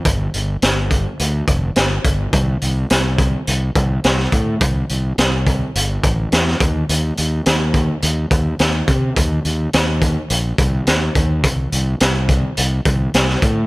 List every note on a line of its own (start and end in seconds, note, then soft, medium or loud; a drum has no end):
0.05 0.27 G1 medium
0.05 kick loud
0.05 closed hi-hat medium
0.34 0.55 G1 medium
0.34 closed hi-hat medium
0.62 1.05 G1 medium
0.62 snare loud
0.62 closed hi-hat medium
0.91 kick medium
0.91 closed hi-hat medium
1.19 1.41 D2 medium
1.19 closed hi-hat medium
1.48 1.69 F1 medium
1.48 kick medium
1.48 closed hi-hat medium
1.76 1.98 G1 medium
1.76 snare medium
1.76 closed hi-hat medium
2.04 2.26 G1 medium
2.04 kick medium
2.04 closed hi-hat medium
2.33 2.54 C2 medium
2.33 kick loud
2.33 closed hi-hat medium
2.62 2.83 C2 medium
2.62 closed hi-hat medium
2.90 3.33 C2 medium
2.90 snare loud
2.90 closed hi-hat medium
3.18 kick medium
3.18 closed hi-hat medium
3.47 3.69 C2 medium
3.47 closed hi-hat medium
3.75 3.97 C2 medium
3.75 kick medium
3.75 closed hi-hat medium
4.04 4.26 C2 medium
4.04 snare medium
4.04 closed hi-hat medium
4.19 snare soft
4.32 4.54 A2 medium
4.32 kick medium
4.32 closed hi-hat medium
4.61 4.82 C2 medium
4.61 kick loud
4.61 closed hi-hat medium
4.89 5.11 C2 medium
4.89 closed hi-hat medium
5.18 5.60 C2 medium
5.18 snare loud
5.18 closed hi-hat medium
5.47 kick medium
5.47 closed hi-hat soft
5.75 5.97 G1 medium
5.75 closed hi-hat medium
6.04 6.25 A1 medium
6.04 kick medium
6.04 closed hi-hat medium
6.32 6.54 E2 medium
6.32 snare medium
6.32 closed hi-hat medium
6.47 snare soft
6.60 6.82 D#2 medium
6.60 kick loud
6.60 closed hi-hat medium
6.89 7.10 D#2 medium
6.89 closed hi-hat medium
7.17 7.39 D#2 medium
7.17 closed hi-hat medium
7.46 7.88 D#2 medium
7.46 snare loud
7.46 closed hi-hat medium
7.74 kick medium
7.74 closed hi-hat soft
8.02 8.24 D#2 medium
8.02 closed hi-hat medium
8.31 8.52 D#2 medium
8.31 kick medium
8.31 closed hi-hat medium
8.59 8.81 D#2 medium
8.59 snare medium
8.59 closed hi-hat medium
8.88 9.09 C3 medium
8.88 kick medium
8.88 closed hi-hat medium
9.16 9.38 D#2 medium
9.16 kick loud
9.16 closed hi-hat medium
9.45 9.66 D#2 medium
9.45 closed hi-hat medium
9.73 10.16 D#2 medium
9.73 snare loud
9.73 closed hi-hat medium
10.02 kick medium
10.02 closed hi-hat medium
10.30 10.51 A#1 medium
10.30 closed hi-hat medium
10.58 10.79 C2 medium
10.58 kick medium
10.58 closed hi-hat medium
10.87 11.08 D#2 medium
10.87 snare medium
10.87 closed hi-hat medium
11.15 11.44 D#2 medium
11.15 kick medium
11.15 closed hi-hat medium
11.44 11.65 C2 medium
11.44 kick loud
11.44 closed hi-hat medium
11.72 11.94 C2 medium
11.72 closed hi-hat medium
12.00 12.43 C2 medium
12.00 snare loud
12.00 closed hi-hat medium
12.29 kick medium
12.29 closed hi-hat medium
12.57 12.79 C2 medium
12.57 closed hi-hat medium
12.85 13.07 C2 medium
12.85 kick medium
12.85 closed hi-hat medium
13.14 13.35 C2 medium
13.14 snare medium
13.14 closed hi-hat medium
13.29 snare soft
13.42 13.63 A2 medium
13.42 kick medium
13.42 closed hi-hat medium